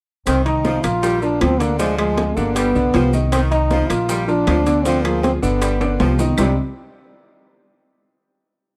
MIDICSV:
0, 0, Header, 1, 6, 480
1, 0, Start_track
1, 0, Key_signature, -3, "minor"
1, 0, Tempo, 381437
1, 340, Time_signature, 4, 2, 24, 8
1, 11030, End_track
2, 0, Start_track
2, 0, Title_t, "Grand piano"
2, 0, Program_c, 0, 0
2, 577, Note_on_c, 0, 51, 90
2, 583, Note_on_c, 0, 63, 92
2, 586, Note_on_c, 0, 75, 93
2, 972, Note_off_c, 0, 51, 0
2, 976, Note_off_c, 0, 63, 0
2, 977, Note_off_c, 0, 75, 0
2, 1052, Note_on_c, 0, 53, 70
2, 1054, Note_on_c, 0, 65, 76
2, 1060, Note_on_c, 0, 70, 81
2, 1252, Note_off_c, 0, 53, 0
2, 1254, Note_off_c, 0, 65, 0
2, 1257, Note_off_c, 0, 70, 0
2, 1295, Note_on_c, 0, 53, 71
2, 1298, Note_on_c, 0, 65, 65
2, 1303, Note_on_c, 0, 70, 70
2, 1494, Note_off_c, 0, 53, 0
2, 1496, Note_off_c, 0, 65, 0
2, 1499, Note_off_c, 0, 70, 0
2, 1535, Note_on_c, 0, 53, 76
2, 1538, Note_on_c, 0, 65, 74
2, 1543, Note_on_c, 0, 70, 72
2, 1932, Note_off_c, 0, 53, 0
2, 1934, Note_off_c, 0, 65, 0
2, 1937, Note_off_c, 0, 70, 0
2, 2012, Note_on_c, 0, 50, 91
2, 2015, Note_on_c, 0, 62, 91
2, 2019, Note_on_c, 0, 74, 88
2, 2213, Note_off_c, 0, 50, 0
2, 2215, Note_off_c, 0, 62, 0
2, 2218, Note_off_c, 0, 74, 0
2, 2255, Note_on_c, 0, 50, 73
2, 2259, Note_on_c, 0, 62, 79
2, 2263, Note_on_c, 0, 74, 72
2, 2456, Note_off_c, 0, 50, 0
2, 2458, Note_off_c, 0, 62, 0
2, 2460, Note_off_c, 0, 74, 0
2, 2494, Note_on_c, 0, 53, 78
2, 2497, Note_on_c, 0, 65, 81
2, 2505, Note_on_c, 0, 68, 81
2, 2892, Note_off_c, 0, 53, 0
2, 2894, Note_off_c, 0, 65, 0
2, 2899, Note_off_c, 0, 68, 0
2, 2979, Note_on_c, 0, 50, 90
2, 2984, Note_on_c, 0, 62, 88
2, 2987, Note_on_c, 0, 74, 90
2, 3376, Note_off_c, 0, 50, 0
2, 3379, Note_off_c, 0, 62, 0
2, 3381, Note_off_c, 0, 74, 0
2, 3464, Note_on_c, 0, 50, 83
2, 3466, Note_on_c, 0, 62, 84
2, 3471, Note_on_c, 0, 74, 82
2, 3662, Note_off_c, 0, 50, 0
2, 3663, Note_off_c, 0, 62, 0
2, 3666, Note_off_c, 0, 74, 0
2, 3697, Note_on_c, 0, 53, 72
2, 3703, Note_on_c, 0, 65, 70
2, 3706, Note_on_c, 0, 67, 76
2, 3898, Note_off_c, 0, 53, 0
2, 3902, Note_off_c, 0, 65, 0
2, 3904, Note_off_c, 0, 67, 0
2, 3943, Note_on_c, 0, 51, 88
2, 3946, Note_on_c, 0, 63, 90
2, 3947, Note_on_c, 0, 75, 85
2, 4339, Note_off_c, 0, 51, 0
2, 4341, Note_off_c, 0, 63, 0
2, 4342, Note_off_c, 0, 75, 0
2, 4423, Note_on_c, 0, 51, 84
2, 4426, Note_on_c, 0, 63, 87
2, 4430, Note_on_c, 0, 75, 94
2, 4820, Note_off_c, 0, 51, 0
2, 4822, Note_off_c, 0, 63, 0
2, 4824, Note_off_c, 0, 75, 0
2, 4906, Note_on_c, 0, 53, 85
2, 4909, Note_on_c, 0, 65, 73
2, 4913, Note_on_c, 0, 70, 77
2, 5105, Note_off_c, 0, 53, 0
2, 5107, Note_off_c, 0, 65, 0
2, 5109, Note_off_c, 0, 70, 0
2, 5141, Note_on_c, 0, 53, 74
2, 5146, Note_on_c, 0, 65, 73
2, 5151, Note_on_c, 0, 70, 76
2, 5342, Note_off_c, 0, 53, 0
2, 5345, Note_off_c, 0, 65, 0
2, 5348, Note_off_c, 0, 70, 0
2, 5385, Note_on_c, 0, 53, 78
2, 5391, Note_on_c, 0, 65, 81
2, 5392, Note_on_c, 0, 70, 76
2, 5781, Note_off_c, 0, 53, 0
2, 5785, Note_off_c, 0, 65, 0
2, 5786, Note_off_c, 0, 70, 0
2, 5867, Note_on_c, 0, 50, 84
2, 5870, Note_on_c, 0, 62, 89
2, 5874, Note_on_c, 0, 74, 87
2, 6066, Note_off_c, 0, 50, 0
2, 6068, Note_off_c, 0, 62, 0
2, 6070, Note_off_c, 0, 74, 0
2, 6106, Note_on_c, 0, 50, 77
2, 6108, Note_on_c, 0, 62, 72
2, 6114, Note_on_c, 0, 74, 78
2, 6305, Note_off_c, 0, 50, 0
2, 6306, Note_off_c, 0, 62, 0
2, 6310, Note_off_c, 0, 74, 0
2, 6347, Note_on_c, 0, 53, 78
2, 6352, Note_on_c, 0, 65, 83
2, 6355, Note_on_c, 0, 68, 83
2, 6743, Note_off_c, 0, 53, 0
2, 6745, Note_off_c, 0, 65, 0
2, 6748, Note_off_c, 0, 68, 0
2, 6827, Note_on_c, 0, 50, 90
2, 6832, Note_on_c, 0, 62, 90
2, 6833, Note_on_c, 0, 74, 97
2, 7222, Note_off_c, 0, 50, 0
2, 7225, Note_off_c, 0, 62, 0
2, 7226, Note_off_c, 0, 74, 0
2, 7307, Note_on_c, 0, 50, 89
2, 7310, Note_on_c, 0, 62, 84
2, 7313, Note_on_c, 0, 74, 84
2, 7505, Note_off_c, 0, 50, 0
2, 7507, Note_off_c, 0, 62, 0
2, 7509, Note_off_c, 0, 74, 0
2, 7550, Note_on_c, 0, 53, 74
2, 7554, Note_on_c, 0, 65, 67
2, 7556, Note_on_c, 0, 67, 66
2, 7747, Note_off_c, 0, 53, 0
2, 7750, Note_off_c, 0, 65, 0
2, 7750, Note_off_c, 0, 67, 0
2, 7788, Note_on_c, 0, 51, 93
2, 7791, Note_on_c, 0, 63, 81
2, 7795, Note_on_c, 0, 75, 89
2, 7986, Note_off_c, 0, 51, 0
2, 7988, Note_off_c, 0, 63, 0
2, 7990, Note_off_c, 0, 75, 0
2, 8015, Note_on_c, 0, 48, 84
2, 8021, Note_on_c, 0, 55, 80
2, 8021, Note_on_c, 0, 60, 74
2, 8022, Note_on_c, 0, 62, 73
2, 8027, Note_on_c, 0, 63, 77
2, 8028, Note_on_c, 0, 67, 93
2, 8245, Note_off_c, 0, 48, 0
2, 8248, Note_off_c, 0, 55, 0
2, 8248, Note_off_c, 0, 60, 0
2, 8249, Note_off_c, 0, 62, 0
2, 8252, Note_off_c, 0, 63, 0
2, 8252, Note_off_c, 0, 67, 0
2, 11030, End_track
3, 0, Start_track
3, 0, Title_t, "Trombone"
3, 0, Program_c, 1, 57
3, 335, Note_on_c, 1, 60, 107
3, 560, Note_off_c, 1, 60, 0
3, 575, Note_on_c, 1, 63, 103
3, 1056, Note_on_c, 1, 65, 110
3, 1075, Note_off_c, 1, 63, 0
3, 1534, Note_off_c, 1, 65, 0
3, 1542, Note_on_c, 1, 62, 93
3, 1780, Note_on_c, 1, 60, 100
3, 1799, Note_off_c, 1, 62, 0
3, 2021, Note_on_c, 1, 58, 91
3, 2040, Note_off_c, 1, 60, 0
3, 2247, Note_off_c, 1, 58, 0
3, 2254, Note_on_c, 1, 56, 97
3, 2482, Note_off_c, 1, 56, 0
3, 2500, Note_on_c, 1, 56, 89
3, 2980, Note_on_c, 1, 58, 88
3, 2999, Note_off_c, 1, 56, 0
3, 3217, Note_on_c, 1, 59, 104
3, 3236, Note_off_c, 1, 58, 0
3, 3943, Note_off_c, 1, 59, 0
3, 4181, Note_on_c, 1, 60, 100
3, 4291, Note_off_c, 1, 60, 0
3, 4418, Note_on_c, 1, 63, 104
3, 4906, Note_on_c, 1, 65, 94
3, 4924, Note_off_c, 1, 63, 0
3, 5379, Note_off_c, 1, 65, 0
3, 5387, Note_on_c, 1, 62, 103
3, 6102, Note_on_c, 1, 60, 101
3, 6120, Note_off_c, 1, 62, 0
3, 6347, Note_on_c, 1, 58, 86
3, 6366, Note_off_c, 1, 60, 0
3, 6577, Note_off_c, 1, 58, 0
3, 6584, Note_on_c, 1, 60, 94
3, 6694, Note_off_c, 1, 60, 0
3, 6828, Note_on_c, 1, 59, 81
3, 7739, Note_off_c, 1, 59, 0
3, 8029, Note_on_c, 1, 55, 87
3, 8253, Note_off_c, 1, 55, 0
3, 11030, End_track
4, 0, Start_track
4, 0, Title_t, "Saxophone section"
4, 0, Program_c, 2, 65
4, 337, Note_on_c, 2, 51, 90
4, 590, Note_off_c, 2, 51, 0
4, 813, Note_on_c, 2, 53, 82
4, 1067, Note_off_c, 2, 53, 0
4, 1296, Note_on_c, 2, 55, 86
4, 1550, Note_off_c, 2, 55, 0
4, 1776, Note_on_c, 2, 53, 69
4, 2030, Note_off_c, 2, 53, 0
4, 2254, Note_on_c, 2, 53, 95
4, 2830, Note_off_c, 2, 53, 0
4, 3214, Note_on_c, 2, 55, 82
4, 3470, Note_off_c, 2, 55, 0
4, 3694, Note_on_c, 2, 53, 81
4, 3950, Note_off_c, 2, 53, 0
4, 4184, Note_on_c, 2, 51, 88
4, 4438, Note_off_c, 2, 51, 0
4, 4667, Note_on_c, 2, 53, 83
4, 4920, Note_off_c, 2, 53, 0
4, 5146, Note_on_c, 2, 55, 81
4, 5400, Note_off_c, 2, 55, 0
4, 5631, Note_on_c, 2, 53, 80
4, 5884, Note_off_c, 2, 53, 0
4, 6112, Note_on_c, 2, 53, 96
4, 6683, Note_off_c, 2, 53, 0
4, 7069, Note_on_c, 2, 55, 74
4, 7321, Note_off_c, 2, 55, 0
4, 7551, Note_on_c, 2, 53, 86
4, 7802, Note_off_c, 2, 53, 0
4, 8035, Note_on_c, 2, 48, 79
4, 8200, Note_off_c, 2, 48, 0
4, 11030, End_track
5, 0, Start_track
5, 0, Title_t, "Upright bass"
5, 0, Program_c, 3, 32
5, 337, Note_on_c, 3, 36, 78
5, 1008, Note_off_c, 3, 36, 0
5, 1060, Note_on_c, 3, 34, 91
5, 1731, Note_off_c, 3, 34, 0
5, 1780, Note_on_c, 3, 38, 91
5, 2910, Note_off_c, 3, 38, 0
5, 2981, Note_on_c, 3, 31, 84
5, 3431, Note_off_c, 3, 31, 0
5, 3461, Note_on_c, 3, 35, 60
5, 3687, Note_off_c, 3, 35, 0
5, 3703, Note_on_c, 3, 36, 89
5, 4834, Note_off_c, 3, 36, 0
5, 4906, Note_on_c, 3, 34, 87
5, 5579, Note_off_c, 3, 34, 0
5, 5628, Note_on_c, 3, 38, 99
5, 6756, Note_off_c, 3, 38, 0
5, 6831, Note_on_c, 3, 31, 94
5, 7501, Note_off_c, 3, 31, 0
5, 7551, Note_on_c, 3, 36, 95
5, 7975, Note_off_c, 3, 36, 0
5, 8030, Note_on_c, 3, 36, 91
5, 8253, Note_off_c, 3, 36, 0
5, 11030, End_track
6, 0, Start_track
6, 0, Title_t, "Drums"
6, 335, Note_on_c, 9, 70, 85
6, 336, Note_on_c, 9, 75, 67
6, 338, Note_on_c, 9, 63, 34
6, 340, Note_on_c, 9, 65, 81
6, 341, Note_on_c, 9, 60, 62
6, 461, Note_off_c, 9, 70, 0
6, 462, Note_off_c, 9, 75, 0
6, 464, Note_off_c, 9, 63, 0
6, 465, Note_off_c, 9, 65, 0
6, 466, Note_off_c, 9, 60, 0
6, 576, Note_on_c, 9, 63, 32
6, 576, Note_on_c, 9, 70, 29
6, 578, Note_on_c, 9, 65, 68
6, 702, Note_off_c, 9, 63, 0
6, 702, Note_off_c, 9, 70, 0
6, 704, Note_off_c, 9, 65, 0
6, 813, Note_on_c, 9, 63, 94
6, 816, Note_on_c, 9, 66, 61
6, 817, Note_on_c, 9, 60, 56
6, 817, Note_on_c, 9, 70, 28
6, 939, Note_off_c, 9, 63, 0
6, 942, Note_off_c, 9, 60, 0
6, 942, Note_off_c, 9, 66, 0
6, 942, Note_off_c, 9, 70, 0
6, 1053, Note_on_c, 9, 70, 72
6, 1057, Note_on_c, 9, 65, 100
6, 1059, Note_on_c, 9, 63, 30
6, 1060, Note_on_c, 9, 75, 62
6, 1178, Note_off_c, 9, 70, 0
6, 1183, Note_off_c, 9, 65, 0
6, 1185, Note_off_c, 9, 63, 0
6, 1186, Note_off_c, 9, 75, 0
6, 1297, Note_on_c, 9, 63, 35
6, 1298, Note_on_c, 9, 60, 67
6, 1300, Note_on_c, 9, 70, 88
6, 1423, Note_off_c, 9, 63, 0
6, 1424, Note_off_c, 9, 60, 0
6, 1425, Note_off_c, 9, 70, 0
6, 1537, Note_on_c, 9, 63, 32
6, 1537, Note_on_c, 9, 70, 29
6, 1663, Note_off_c, 9, 63, 0
6, 1663, Note_off_c, 9, 70, 0
6, 1776, Note_on_c, 9, 70, 29
6, 1778, Note_on_c, 9, 65, 97
6, 1778, Note_on_c, 9, 66, 88
6, 1779, Note_on_c, 9, 75, 68
6, 1781, Note_on_c, 9, 63, 79
6, 1782, Note_on_c, 9, 60, 66
6, 1782, Note_on_c, 9, 61, 80
6, 1902, Note_off_c, 9, 70, 0
6, 1904, Note_off_c, 9, 65, 0
6, 1904, Note_off_c, 9, 66, 0
6, 1905, Note_off_c, 9, 75, 0
6, 1907, Note_off_c, 9, 63, 0
6, 1908, Note_off_c, 9, 60, 0
6, 1908, Note_off_c, 9, 61, 0
6, 2018, Note_on_c, 9, 65, 72
6, 2021, Note_on_c, 9, 70, 67
6, 2144, Note_off_c, 9, 65, 0
6, 2147, Note_off_c, 9, 70, 0
6, 2257, Note_on_c, 9, 70, 90
6, 2260, Note_on_c, 9, 60, 70
6, 2264, Note_on_c, 9, 63, 32
6, 2383, Note_off_c, 9, 70, 0
6, 2385, Note_off_c, 9, 60, 0
6, 2389, Note_off_c, 9, 63, 0
6, 2498, Note_on_c, 9, 60, 33
6, 2499, Note_on_c, 9, 65, 88
6, 2500, Note_on_c, 9, 70, 30
6, 2505, Note_on_c, 9, 63, 35
6, 2505, Note_on_c, 9, 75, 68
6, 2624, Note_off_c, 9, 60, 0
6, 2625, Note_off_c, 9, 65, 0
6, 2626, Note_off_c, 9, 70, 0
6, 2630, Note_off_c, 9, 75, 0
6, 2631, Note_off_c, 9, 63, 0
6, 2738, Note_on_c, 9, 65, 70
6, 2738, Note_on_c, 9, 66, 61
6, 2740, Note_on_c, 9, 70, 26
6, 2741, Note_on_c, 9, 60, 57
6, 2742, Note_on_c, 9, 63, 91
6, 2864, Note_off_c, 9, 65, 0
6, 2864, Note_off_c, 9, 66, 0
6, 2866, Note_off_c, 9, 70, 0
6, 2867, Note_off_c, 9, 60, 0
6, 2868, Note_off_c, 9, 63, 0
6, 2979, Note_on_c, 9, 60, 31
6, 2982, Note_on_c, 9, 63, 30
6, 2983, Note_on_c, 9, 70, 75
6, 3105, Note_off_c, 9, 60, 0
6, 3108, Note_off_c, 9, 63, 0
6, 3109, Note_off_c, 9, 70, 0
6, 3221, Note_on_c, 9, 60, 74
6, 3222, Note_on_c, 9, 70, 85
6, 3223, Note_on_c, 9, 63, 37
6, 3224, Note_on_c, 9, 65, 91
6, 3224, Note_on_c, 9, 75, 54
6, 3347, Note_off_c, 9, 60, 0
6, 3348, Note_off_c, 9, 70, 0
6, 3349, Note_off_c, 9, 63, 0
6, 3349, Note_off_c, 9, 65, 0
6, 3350, Note_off_c, 9, 75, 0
6, 3464, Note_on_c, 9, 63, 33
6, 3466, Note_on_c, 9, 70, 31
6, 3590, Note_off_c, 9, 63, 0
6, 3592, Note_off_c, 9, 70, 0
6, 3697, Note_on_c, 9, 60, 59
6, 3697, Note_on_c, 9, 61, 74
6, 3704, Note_on_c, 9, 63, 83
6, 3706, Note_on_c, 9, 65, 67
6, 3706, Note_on_c, 9, 66, 84
6, 3710, Note_on_c, 9, 70, 28
6, 3823, Note_off_c, 9, 60, 0
6, 3823, Note_off_c, 9, 61, 0
6, 3830, Note_off_c, 9, 63, 0
6, 3832, Note_off_c, 9, 65, 0
6, 3832, Note_off_c, 9, 66, 0
6, 3836, Note_off_c, 9, 70, 0
6, 3939, Note_on_c, 9, 60, 32
6, 3942, Note_on_c, 9, 70, 75
6, 3945, Note_on_c, 9, 63, 88
6, 4065, Note_off_c, 9, 60, 0
6, 4068, Note_off_c, 9, 70, 0
6, 4071, Note_off_c, 9, 63, 0
6, 4181, Note_on_c, 9, 65, 91
6, 4184, Note_on_c, 9, 60, 63
6, 4184, Note_on_c, 9, 70, 84
6, 4186, Note_on_c, 9, 63, 33
6, 4190, Note_on_c, 9, 75, 73
6, 4307, Note_off_c, 9, 65, 0
6, 4310, Note_off_c, 9, 60, 0
6, 4310, Note_off_c, 9, 70, 0
6, 4312, Note_off_c, 9, 63, 0
6, 4316, Note_off_c, 9, 75, 0
6, 4425, Note_on_c, 9, 70, 31
6, 4427, Note_on_c, 9, 65, 63
6, 4429, Note_on_c, 9, 63, 34
6, 4550, Note_off_c, 9, 70, 0
6, 4553, Note_off_c, 9, 65, 0
6, 4555, Note_off_c, 9, 63, 0
6, 4664, Note_on_c, 9, 60, 55
6, 4664, Note_on_c, 9, 70, 27
6, 4665, Note_on_c, 9, 63, 90
6, 4665, Note_on_c, 9, 66, 69
6, 4790, Note_off_c, 9, 60, 0
6, 4790, Note_off_c, 9, 70, 0
6, 4791, Note_off_c, 9, 63, 0
6, 4791, Note_off_c, 9, 66, 0
6, 4905, Note_on_c, 9, 75, 69
6, 4907, Note_on_c, 9, 63, 34
6, 4910, Note_on_c, 9, 70, 65
6, 4911, Note_on_c, 9, 65, 97
6, 5030, Note_off_c, 9, 75, 0
6, 5033, Note_off_c, 9, 63, 0
6, 5036, Note_off_c, 9, 70, 0
6, 5037, Note_off_c, 9, 65, 0
6, 5148, Note_on_c, 9, 60, 69
6, 5148, Note_on_c, 9, 70, 87
6, 5149, Note_on_c, 9, 63, 36
6, 5274, Note_off_c, 9, 60, 0
6, 5274, Note_off_c, 9, 70, 0
6, 5275, Note_off_c, 9, 63, 0
6, 5390, Note_on_c, 9, 63, 34
6, 5391, Note_on_c, 9, 70, 31
6, 5515, Note_off_c, 9, 63, 0
6, 5517, Note_off_c, 9, 70, 0
6, 5626, Note_on_c, 9, 60, 70
6, 5626, Note_on_c, 9, 61, 83
6, 5630, Note_on_c, 9, 70, 29
6, 5630, Note_on_c, 9, 75, 72
6, 5631, Note_on_c, 9, 63, 85
6, 5632, Note_on_c, 9, 65, 91
6, 5632, Note_on_c, 9, 66, 83
6, 5752, Note_off_c, 9, 60, 0
6, 5752, Note_off_c, 9, 61, 0
6, 5756, Note_off_c, 9, 70, 0
6, 5756, Note_off_c, 9, 75, 0
6, 5757, Note_off_c, 9, 63, 0
6, 5758, Note_off_c, 9, 65, 0
6, 5758, Note_off_c, 9, 66, 0
6, 5869, Note_on_c, 9, 70, 66
6, 5871, Note_on_c, 9, 63, 73
6, 5873, Note_on_c, 9, 65, 70
6, 5995, Note_off_c, 9, 70, 0
6, 5997, Note_off_c, 9, 63, 0
6, 5998, Note_off_c, 9, 65, 0
6, 6109, Note_on_c, 9, 60, 67
6, 6110, Note_on_c, 9, 70, 82
6, 6111, Note_on_c, 9, 63, 32
6, 6235, Note_off_c, 9, 60, 0
6, 6235, Note_off_c, 9, 70, 0
6, 6237, Note_off_c, 9, 63, 0
6, 6351, Note_on_c, 9, 60, 34
6, 6351, Note_on_c, 9, 63, 37
6, 6355, Note_on_c, 9, 65, 90
6, 6355, Note_on_c, 9, 70, 30
6, 6355, Note_on_c, 9, 75, 68
6, 6477, Note_off_c, 9, 60, 0
6, 6477, Note_off_c, 9, 63, 0
6, 6481, Note_off_c, 9, 65, 0
6, 6481, Note_off_c, 9, 70, 0
6, 6481, Note_off_c, 9, 75, 0
6, 6587, Note_on_c, 9, 60, 52
6, 6594, Note_on_c, 9, 63, 94
6, 6597, Note_on_c, 9, 70, 29
6, 6598, Note_on_c, 9, 65, 67
6, 6598, Note_on_c, 9, 66, 64
6, 6713, Note_off_c, 9, 60, 0
6, 6720, Note_off_c, 9, 63, 0
6, 6722, Note_off_c, 9, 70, 0
6, 6724, Note_off_c, 9, 65, 0
6, 6724, Note_off_c, 9, 66, 0
6, 6827, Note_on_c, 9, 60, 33
6, 6832, Note_on_c, 9, 63, 34
6, 6834, Note_on_c, 9, 70, 73
6, 6953, Note_off_c, 9, 60, 0
6, 6958, Note_off_c, 9, 63, 0
6, 6960, Note_off_c, 9, 70, 0
6, 7068, Note_on_c, 9, 60, 73
6, 7070, Note_on_c, 9, 70, 82
6, 7072, Note_on_c, 9, 63, 34
6, 7072, Note_on_c, 9, 65, 90
6, 7074, Note_on_c, 9, 75, 60
6, 7194, Note_off_c, 9, 60, 0
6, 7196, Note_off_c, 9, 70, 0
6, 7198, Note_off_c, 9, 63, 0
6, 7198, Note_off_c, 9, 65, 0
6, 7200, Note_off_c, 9, 75, 0
6, 7312, Note_on_c, 9, 65, 98
6, 7315, Note_on_c, 9, 70, 32
6, 7316, Note_on_c, 9, 63, 34
6, 7438, Note_off_c, 9, 65, 0
6, 7441, Note_off_c, 9, 70, 0
6, 7442, Note_off_c, 9, 63, 0
6, 7548, Note_on_c, 9, 70, 30
6, 7550, Note_on_c, 9, 60, 64
6, 7550, Note_on_c, 9, 61, 84
6, 7553, Note_on_c, 9, 63, 83
6, 7553, Note_on_c, 9, 66, 90
6, 7674, Note_off_c, 9, 70, 0
6, 7676, Note_off_c, 9, 60, 0
6, 7676, Note_off_c, 9, 61, 0
6, 7679, Note_off_c, 9, 63, 0
6, 7679, Note_off_c, 9, 66, 0
6, 7788, Note_on_c, 9, 63, 83
6, 7789, Note_on_c, 9, 70, 70
6, 7790, Note_on_c, 9, 66, 82
6, 7793, Note_on_c, 9, 60, 33
6, 7914, Note_off_c, 9, 63, 0
6, 7915, Note_off_c, 9, 70, 0
6, 7916, Note_off_c, 9, 66, 0
6, 7919, Note_off_c, 9, 60, 0
6, 8025, Note_on_c, 9, 75, 106
6, 8027, Note_on_c, 9, 70, 97
6, 8029, Note_on_c, 9, 64, 92
6, 8031, Note_on_c, 9, 61, 99
6, 8036, Note_on_c, 9, 66, 94
6, 8151, Note_off_c, 9, 75, 0
6, 8153, Note_off_c, 9, 70, 0
6, 8155, Note_off_c, 9, 64, 0
6, 8157, Note_off_c, 9, 61, 0
6, 8161, Note_off_c, 9, 66, 0
6, 11030, End_track
0, 0, End_of_file